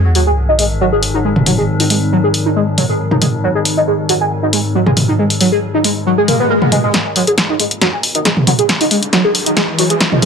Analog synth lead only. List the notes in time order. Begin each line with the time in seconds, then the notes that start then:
0.15 F#3
0.27 G#4
0.49 D#4
0.59 G#3
0.81 F#3
0.92 G#4
1.14 D#4
1.25 G#3
1.46 F#3
1.58 G#4
1.80 D#4
1.90 G#3
2.12 F#3
2.24 G#4
2.46 D#4
2.56 G#3
2.78 F#3
2.89 G#4
3.11 D#4
3.22 G#3
3.44 F#3
3.55 G#4
3.77 D#4
3.87 G#3
4.09 F#3
4.21 G#4
4.43 D#4
4.53 G#3
4.75 F#3
4.86 G#4
5.08 D#4
5.19 G#3
5.41 F#3
5.52 G#4
5.74 D#4
5.84 G#3
6.06 F#3
6.18 G#4
6.28 A#3
6.40 B3
6.50 A#3
6.62 B3
6.72 G#3
6.84 G#3
6.94 G#3
7.16 F#3
7.27 G#4
7.49 D#4
7.60 G#3
7.81 F#3
7.93 G#4
8.15 D#4
8.25 G#3
8.47 F#3
8.59 G#4
8.81 D#4
8.91 G#3
9.13 F#3
9.24 G#4
9.46 D#4
9.57 G#3
9.79 F#3
9.90 G#4
10.12 D#4